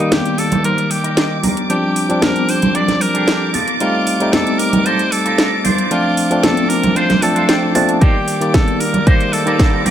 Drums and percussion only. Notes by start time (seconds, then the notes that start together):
0.12 snare, closed hi-hat, high conga
0.25 closed hi-hat
0.38 open hi-hat
0.52 closed hi-hat, low conga
0.64 closed hi-hat
0.78 closed hi-hat
0.91 open hi-hat
1.04 closed hi-hat
1.17 snare, closed hi-hat
1.43 open hi-hat, high conga, low conga
1.57 closed hi-hat
1.70 closed hi-hat
1.96 open hi-hat
2.10 closed hi-hat
2.22 snare, closed hi-hat, high conga
2.36 closed hi-hat
2.49 open hi-hat
2.62 closed hi-hat, low conga
2.75 closed hi-hat
2.88 snare, closed hi-hat, low conga
3.01 open hi-hat
3.15 closed hi-hat
3.27 snare, closed hi-hat
3.54 open hi-hat, high conga
3.68 closed hi-hat
3.80 closed hi-hat
4.07 open hi-hat
4.20 closed hi-hat
4.33 snare, closed hi-hat, high conga
4.47 closed hi-hat
4.59 open hi-hat
4.73 closed hi-hat, low conga
4.86 closed hi-hat
4.99 closed hi-hat
5.12 open hi-hat
5.26 closed hi-hat
5.38 snare, closed hi-hat
5.65 open hi-hat, high conga, low conga
5.78 closed hi-hat
5.91 closed hi-hat
6.17 open hi-hat
6.31 closed hi-hat
6.43 snare, closed hi-hat, high conga
6.57 closed hi-hat
6.70 open hi-hat
6.83 closed hi-hat, low conga
6.96 closed hi-hat
7.10 snare, closed hi-hat, low conga
7.22 open hi-hat
7.36 closed hi-hat
7.49 snare, closed hi-hat
7.75 open hi-hat, high conga
7.89 closed hi-hat
8.01 kick, closed hi-hat
8.28 open hi-hat
8.41 closed hi-hat
8.54 kick, snare, closed hi-hat, high conga
8.68 closed hi-hat
8.80 open hi-hat
8.94 closed hi-hat, low conga
9.07 kick, closed hi-hat
9.20 closed hi-hat
9.33 open hi-hat
9.47 closed hi-hat
9.59 kick, snare, closed hi-hat
9.86 open hi-hat, high conga, low conga